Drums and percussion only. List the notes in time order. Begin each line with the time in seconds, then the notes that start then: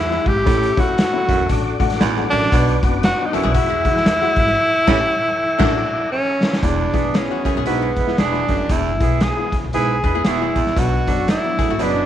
0.11 snare
0.26 kick, open hi-hat
0.47 kick, closed hi-hat
0.63 closed hi-hat
0.77 kick, closed hi-hat
0.98 snare, closed hi-hat
1.29 kick, closed hi-hat
1.49 kick, closed hi-hat
1.80 kick, closed hi-hat
1.90 snare, closed hi-hat
2.01 snare, closed hi-hat
2.16 snare
2.31 closed hi-hat
2.42 snare
2.52 kick, closed hi-hat
2.68 closed hi-hat
2.83 kick, closed hi-hat
3.03 snare, closed hi-hat
3.34 closed hi-hat
3.54 kick, closed hi-hat
3.85 kick, closed hi-hat
3.96 snare
4.06 snare, closed hi-hat
4.21 snare
4.36 kick, closed hi-hat
4.47 snare
4.87 kick, snare, crash
5.60 kick, snare, crash
6.43 snare
6.53 snare
6.63 kick, closed hi-hat
6.94 kick, closed hi-hat
7.14 snare, closed hi-hat
7.45 kick, closed hi-hat
7.66 closed hi-hat
7.96 kick, closed hi-hat
8.08 snare
8.18 snare, closed hi-hat
8.33 snare
8.48 kick, closed hi-hat
8.69 kick, closed hi-hat
9.00 kick, closed hi-hat
9.20 snare, closed hi-hat
9.52 kick, closed hi-hat
9.73 closed hi-hat
10.04 kick, closed hi-hat
10.25 snare, closed hi-hat
10.56 kick, closed hi-hat
10.67 snare
10.77 kick, closed hi-hat
11.08 kick, closed hi-hat
11.28 snare, closed hi-hat
11.59 kick, closed hi-hat
11.79 closed hi-hat